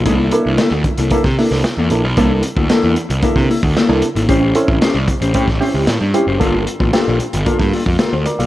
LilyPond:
<<
  \new Staff \with { instrumentName = "Clean electric guitar" } { \time 4/4 \key c \mixolydian \tempo 4 = 113 <bes e' a'>8 r8 <bes e' a'>16 r8 <bes e' a'>16 <bes e' a'>16 r16 <bes e' a'>16 r8 <bes e' a'>16 r8 | <bes e' a'>16 r8 <bes e' a'>16 <bes e' a'>8 r8 <bes e' bes'>16 r16 <bes e' a'>16 r16 <bes e' a'>16 r8 <bes e' a'>16 | <cis' g' bis'>8 r8 <cis' g' bis'>16 r8 <cis' g' bis'>16 <cis' g' bis'>16 r16 <cis' g' bis'>16 r8. <cis' g' bis'>16 <cis' g' bis'>16 | <bes f' a'>16 r8 <bes f' a'>16 <bes f' a'>8 r8 <bes f' bes'>16 r16 <bes f' a'>16 r16 <bes f' a'>16 r8 <bes f' a'>16 | }
  \new Staff \with { instrumentName = "Reed electric piano" } { \time 4/4 \key c \mixolydian <bes d' e' a'>16 r16 <bes d' e' a'>8. r8. <bes d' e' a'>16 r16 <bes d' e' a'>8 r8 <bes d' e' a'>16 r16 | <bes d' e' a'>8 r8 <bes d' e' a'>8 r8 <bes d' e' a'>8 r8. <bes d' e' a'>16 r8 | <bis cis' e' g'>16 r16 <bis cis' e' a'>8. r8. <bis cis' e' g'>16 r16 <bis cis' e' g'>8 r8 <bis cis' e' g'>16 r16 | <bes d' f' a'>8 r8 <bes d' f' g'>8 r8 <bes d' f' a'>8 r8 <g' bes'>16 <a' c''>16 <bes' d''>16 <d'' f''>16 | }
  \new Staff \with { instrumentName = "Picked electric bass" } { \clef bass \time 4/4 \key c \mixolydian c,8 r16 c,16 r16 d,16 r16 c,16 r16 c16 r16 c,16 r16 e,16 bes,,16 b,,16 | c,8 r16 d,16 r16 e,16 r16 c,16 r16 c16 r16 d,16 r16 c,16 r16 gis,,16 | a,,8 r16 a,,16 r16 bis,,16 r16 a,,16 a,16 a,,16 r16 cis,16 a,16 g,16 r16 fis,,16 | g,,8 r16 a,,16 r16 bes,,16 r16 g,,16 r16 g,16 r16 f,16 r16 d,16 r16 b,,16 | }
  \new DrumStaff \with { instrumentName = "Drums" } \drummode { \time 4/4 <hh bd>8 hh8 <hh sn>8 <hh bd>16 hh16 <hh bd>16 <bd sn>16 hho16 sn16 <hh sn>8 hh8 | <hh bd>8 hh16 bd16 <hh sn>8 hh16 hh16 <hh bd>16 <bd sn>16 hho16 bd16 <hh sn>8 hh16 hh16 | <hh bd>8 hh16 bd16 <hh sn>8 <hh bd>16 hh16 <hh bd>16 <bd sn>16 hho8 <hh sn>8 hh8 | <hh bd>8 hh16 bd16 <hh sn>8 hh16 hh16 <hh bd>16 <bd sn>16 hho16 bd16 <hh sn>8 hh16 hh16 | }
>>